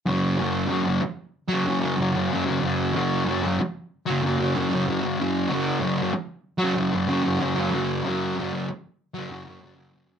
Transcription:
0.06 0.37 F#2 medium
0.06 0.38 C#3 medium
0.06 0.42 F#3 loud
0.37 0.67 F#2 medium
0.37 0.69 C#3 medium
0.43 0.71 F#3 medium
0.67 1.01 F#2 loud
0.67 0.87 C#3 loud
0.72 0.83 F#3 loud
0.84 1.03 F#3 medium
0.88 1.01 C#3 medium
1.02 muted distorted electric guitar stroke soft
1.49 1.69 F#3 medium
1.53 1.66 C#3 medium
1.64 1.96 F#2 medium
1.64 1.84 C#3 medium
1.69 1.80 F#3 medium
1.80 2.02 F#3 medium
1.85 1.98 C#3 medium
1.97 2.29 F#2 medium
1.97 2.15 C#3 medium
2.02 2.12 F#3 medium
2.12 2.34 F#3 medium
2.16 2.31 C#3 medium
2.30 2.60 F#2 medium
2.30 2.49 C#3 medium
2.35 2.45 F#3 medium
2.46 2.65 F#3 medium
2.51 2.62 C#3 medium
2.60 2.94 F#2 medium
2.60 2.94 C#3 medium
2.65 2.97 F#3 loud
2.94 3.25 F#2 medium
2.94 3.27 C#3 medium
2.94 3.30 F#3 medium
3.25 3.60 F#2 loud
3.25 3.46 C#3 loud
3.30 3.43 F#3 loud
3.43 3.61 F#3 medium
3.47 3.60 C#3 medium
3.60 muted distorted electric guitar stroke soft
4.06 4.22 C#3 medium
4.06 4.25 F#3 medium
4.21 4.54 F#2 medium
4.21 4.42 C#3 medium
4.26 4.38 F#3 medium
4.38 4.58 F#3 medium
4.43 4.55 C#3 medium
4.55 4.86 F#2 medium
4.55 4.73 C#3 medium
4.55 4.70 F#3 loud
4.70 4.89 F#3 medium
4.75 4.87 C#3 medium
4.86 5.17 F#2 medium
4.86 5.05 C#3 medium
4.86 5.01 F#3 medium
5.01 5.22 F#3 medium
5.06 5.19 C#3 medium
5.18 5.48 F#2 loud
5.18 5.49 C#3 loud
5.23 5.53 F#3 loud
5.48 5.80 F#2 medium
5.48 5.82 C#3 medium
5.53 5.85 F#3 medium
5.80 6.13 F#2 loud
5.80 6.01 C#3 medium
5.85 5.97 F#3 loud
5.97 6.14 F#3 medium
6.02 6.13 C#3 medium
6.13 muted distorted electric guitar stroke soft
6.58 6.79 F#3 medium
6.64 6.76 C#3 medium
6.75 7.07 F#2 medium
6.75 6.94 C#3 medium
6.80 6.91 F#3 medium
6.91 7.11 F#3 medium
6.96 7.08 C#3 medium
7.08 7.38 F#2 loud
7.08 7.26 C#3 loud
7.12 7.23 F#3 medium
7.23 7.42 F#3 medium
7.27 7.40 C#3 medium
7.39 7.70 F#2 medium
7.39 7.58 C#3 medium
7.39 7.54 F#3 medium
7.55 7.74 F#3 medium
7.59 7.73 C#3 medium
7.71 8.03 F#2 medium
7.71 8.05 C#3 loud
7.75 8.07 F#3 medium
8.04 8.35 F#2 medium
8.04 8.38 C#3 medium
8.08 8.40 F#3 medium
8.36 8.68 F#2 medium
8.36 8.56 C#3 medium
8.41 8.52 F#3 medium
8.53 8.68 C#3 medium
8.53 8.69 F#3 medium
8.69 muted distorted electric guitar stroke soft
9.14 9.29 C#3 medium
9.14 9.31 F#3 medium
9.28 9.59 F#2 medium
9.28 9.48 C#3 medium
9.28 9.44 F#3 medium
9.45 9.65 F#3 medium
9.49 9.62 C#3 medium
9.61 9.91 F#2 loud
9.61 9.79 C#3 loud
9.66 9.74 F#3 loud
9.76 9.96 F#3 medium
9.80 9.94 C#3 medium
9.92 10.19 F#2 medium
9.92 10.11 C#3 medium
9.97 10.06 F#3 medium
10.07 10.19 F#3 medium
10.12 10.19 C#3 medium

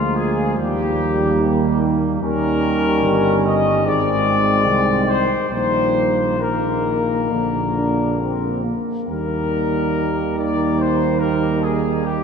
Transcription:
0.00 0.55 D2 soft
0.00 1.42 F3 soft
0.00 0.54 G#3 soft
0.00 0.53 A#3 soft
0.00 0.14 F4 soft
0.15 0.58 G#4 medium
0.57 2.19 D#2 medium
0.57 2.22 G3 soft
0.57 2.19 A#3 soft
0.57 1.79 G4 medium
1.40 2.06 D#3 soft
2.22 3.05 D#2 soft
2.22 3.81 D#3 medium
2.22 3.81 G3 medium
2.22 3.86 C#4 medium
2.22 3.40 A#4 medium
3.04 3.86 G1 soft
3.46 3.85 D#5 medium
3.84 4.67 G#1 medium
3.84 5.49 D#3 soft
3.84 5.34 G#3 medium
3.84 5.34 C4 soft
3.84 5.09 D5 medium
4.66 5.34 C2 soft
5.09 5.49 C5 medium
5.50 7.27 A#1 soft
5.50 6.40 D#3 soft
5.50 6.40 G3 soft
5.50 6.39 A#3 soft
5.50 6.39 C5 medium
6.40 7.33 D#3 soft
6.40 7.28 A#3 soft
6.40 7.72 A#3 soft
6.40 8.64 A#4 soft
7.31 8.73 A#1 soft
7.31 8.76 D3 soft
7.31 8.73 A#3 soft
7.76 8.21 D4 soft
8.20 8.65 C4 soft
8.64 9.09 A#3 soft
9.08 12.24 D#2 soft
9.08 12.24 D#3 medium
9.08 12.24 G3 soft
9.08 12.24 A#3 soft
9.08 10.32 A#4 medium
10.37 10.78 D5 medium
10.79 11.20 C5 soft
11.20 11.61 A#4 soft
11.62 12.03 G#4 medium
12.03 12.24 G4 medium

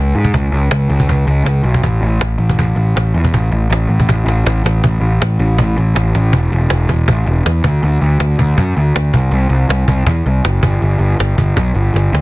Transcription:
0.00 0.12 C#2 medium
0.15 0.31 G#2 medium
0.25 cajon bass medium
0.34 0.51 C#2 medium
0.34 cajon bass loud
0.52 0.69 C#2 medium
0.71 0.88 C#2 loud
0.71 cajon slap loud
0.90 1.06 C#2 medium
1.00 cajon bass medium
1.09 1.25 C#2 medium
1.09 cajon bass medium
1.27 1.44 C#2 medium
1.45 1.62 C#2 medium
1.45 cajon slap loud
1.63 1.80 B1 medium
1.74 cajon bass medium
1.83 2.00 A1 medium
1.83 cajon bass medium
2.02 2.18 A1 loud
2.21 2.38 A1 medium
2.21 cajon slap loud
2.38 2.55 A1 medium
2.50 cajon bass medium
2.59 2.75 A1 loud
2.59 cajon bass loud
2.76 2.93 A1 loud
2.96 3.12 A1 medium
2.96 cajon slap loud
3.14 3.31 E2 medium
3.25 cajon bass medium
3.34 3.50 A1 loud
3.34 cajon bass loud
3.51 3.68 A1 medium
3.70 3.87 A1 medium
3.70 cajon slap loud
3.89 4.06 A1 medium
4.00 cajon bass medium
4.09 4.25 A1 medium
4.09 cajon bass loud
4.09 cajon slap medium
4.26 4.43 A1 loud
4.26 cajon slap medium
4.45 4.62 A1 loud
4.45 cajon slap loud
4.64 4.80 A1 medium
4.64 cajon slap medium
4.84 5.00 A1 medium
4.84 cajon bass loud
5.01 5.19 A1 medium
5.21 5.39 A1 medium
5.21 cajon slap loud
5.39 5.57 A1 medium
5.58 5.76 A1 loud
5.58 cajon bass loud
5.78 5.95 A1 medium
5.95 6.13 A1 loud
5.95 cajon slap loud
6.15 6.32 A1 medium
6.15 cajon slap medium
6.33 6.48 E1 loud
6.33 cajon bass loud
6.52 6.67 E1 medium
6.70 6.85 E1 loud
6.70 cajon slap loud
6.89 7.04 E1 loud
6.89 cajon bass medium
7.08 7.23 A1 loud
7.08 cajon bass loud
7.27 7.41 E1 loud
7.46 7.60 E2 loud
7.46 cajon slap loud
7.64 7.79 D2 medium
7.64 cajon bass loud
7.83 7.97 D2 loud
8.02 8.16 D2 medium
8.20 8.34 D2 medium
8.20 cajon slap loud
8.39 8.53 D2 medium
8.39 cajon bass medium
8.58 8.72 F#2 loud
8.58 cajon bass loud
8.77 8.91 D2 loud
8.96 9.10 D2 medium
8.96 cajon slap loud
9.14 9.28 C2 medium
9.14 cajon bass loud
9.31 9.46 C2 loud
9.49 9.64 C2 loud
9.69 9.84 C2 loud
9.69 cajon slap loud
9.88 10.02 C2 medium
9.88 cajon bass loud
10.06 10.21 E2 loud
10.06 cajon bass loud
10.26 10.40 C2 loud
10.44 10.59 F#1 loud
10.44 cajon slap loud
10.63 10.77 G1 medium
10.63 cajon bass loud
10.82 10.96 G1 loud
10.99 11.14 G1 medium
11.19 11.33 G1 medium
11.19 cajon slap loud
11.38 11.52 G1 medium
11.38 cajon bass medium
11.57 11.71 B1 loud
11.57 cajon bass loud
11.75 11.89 G1 medium
11.94 12.08 G1 loud
11.94 cajon slap medium
12.13 12.21 D2 medium
12.13 cajon slap loud

